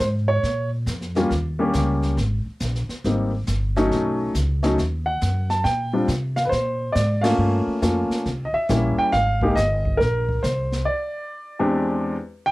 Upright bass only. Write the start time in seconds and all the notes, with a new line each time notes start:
0.00 G#2
0.43 A#2
0.86 F2
1.30 D#2
1.74 C#2
2.17 G#1
2.46 muted upright bass stroke
2.61 A#1
2.89 muted upright bass stroke
3.04 G#1
3.48 G1
3.92 B1
4.35 C#2
4.78 D#2
5.22 F#2
5.64 A#2
6.08 C3
6.52 A#2
6.95 G#2
7.38 G2
7.67 muted upright bass stroke
7.82 F2
8.09 muted upright bass stroke
8.26 C2
8.53 muted upright bass stroke
8.69 A#1
8.97 muted upright bass stroke
9.13 G#1
9.57 G1
10.01 A#1
10.44 C2